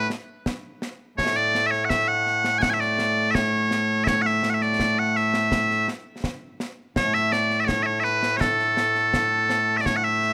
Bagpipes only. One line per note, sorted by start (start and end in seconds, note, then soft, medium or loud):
1.18 5.88 A2 medium
1.18 5.88 A3 medium
1.18 1.36 C#5 loud
1.36 1.67 D5 loud
1.67 1.71 E5 medium
1.71 1.85 C#5 medium
1.85 1.89 F#5 medium
1.89 2.08 E5 loud
2.08 2.58 F#5 loud
2.58 2.70 F#5 loud
2.58 2.62 G#5 loud
2.70 2.80 E5 medium
2.70 2.74 G#5 medium
2.80 3.31 D5 medium
3.31 4.04 C#5 medium
3.31 3.35 E5 medium
4.04 4.22 C#5 medium
4.04 4.08 E5 medium
4.22 4.26 F#5 medium
4.26 4.50 E5 medium
4.50 4.54 F#5 medium
4.54 4.62 E5 medium
4.62 4.99 D5 medium
4.99 5.16 F#5 medium
5.16 5.88 E5 medium
6.97 10.33 A2 medium
6.97 10.33 A3 medium
6.97 7.14 C#5 loud
7.14 7.32 E5 loud
7.32 7.60 D5 medium
7.60 7.65 E5 medium
7.65 7.83 C#5 medium
7.65 7.68 D5 medium
7.83 8.00 C#5 medium
7.83 7.86 E5 medium
8.00 8.37 B4 medium
8.00 8.04 E5 medium
8.37 9.77 A4 medium
8.37 8.40 C#5 medium
9.77 9.86 D5 medium
9.77 9.81 E5 medium
9.86 9.96 C#5 loud
9.96 10.04 F#5 medium
10.04 10.33 E5 loud